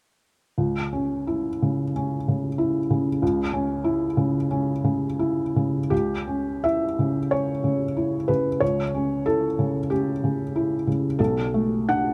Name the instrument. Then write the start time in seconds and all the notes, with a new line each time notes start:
felt piano
0.58 C#2
0.93 C#4
1.27 E4
1.62 C#3
1.96 C#4
2.28 C#3
2.58 E4
2.91 C#3
3.22 C#2
3.53 C#4
3.84 E4
4.17 C#3
4.51 C#4
4.84 C#3
5.19 E4
5.56 C#3
5.90 C#2 G4
6.27 C#4
6.64 E4 E5
6.99 C#3
7.31 C#4 C#5
7.64 C#3
7.96 E4
8.28 C#3 B4
8.60 C#2 C#5
8.94 C#4
9.26 E4 A4
9.59 C#3
9.90 C#4 G4
10.24 C#3
10.56 E4
10.87 C#3
11.19 B1 A4
11.54 A3
11.89 D4 F#5